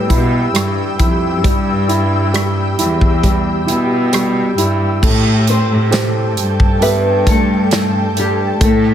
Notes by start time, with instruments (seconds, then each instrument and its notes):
Already playing: grand piano G3 E4, ambient pad G4 G5 E6, nylon-string guitar B4
0.10 cello section B2, grand piano E4, kick, closed hi-hat
0.54 cello section G2, grand piano G3, cross-stick, closed hi-hat
0.99 cello section F2, grand piano E4, kick, closed hi-hat
1.44 cello section G2, grand piano G3, kick, closed hi-hat
1.88 grand piano E4, closed hi-hat
2.34 grand piano G3, cross-stick, closed hi-hat
2.79 cello section E2, grand piano E4, closed hi-hat
3.01 kick
3.23 grand piano G3, kick, closed hi-hat
3.66 cello section B2, grand piano E4, closed hi-hat
4.13 grand piano G3, cross-stick, closed hi-hat
4.58 cello section G2, grand piano E4, cross-stick, closed hi-hat
5.03 cello section A2, grand piano A3, ambient pad A4 G5 A5, kick, crash
5.47 nylon-string guitar C4 C5, closed hi-hat
5.71 cello section A2
5.91 grand piano G4 A4 C5, snare, closed hi-hat
6.37 cello section G2, closed hi-hat
6.60 kick
6.81 nylon-string guitar B3 B4, grand piano G4 A4 E5, closed hi-hat
7.27 nylon-string guitar A3 A4, kick, closed hi-hat
7.71 snare, closed hi-hat
8.17 cello section G2, nylon-string guitar G3 G4, closed hi-hat
8.60 cello section A2, grand piano A3, nylon-string guitar A3 A4, ambient pad F5, kick, closed hi-hat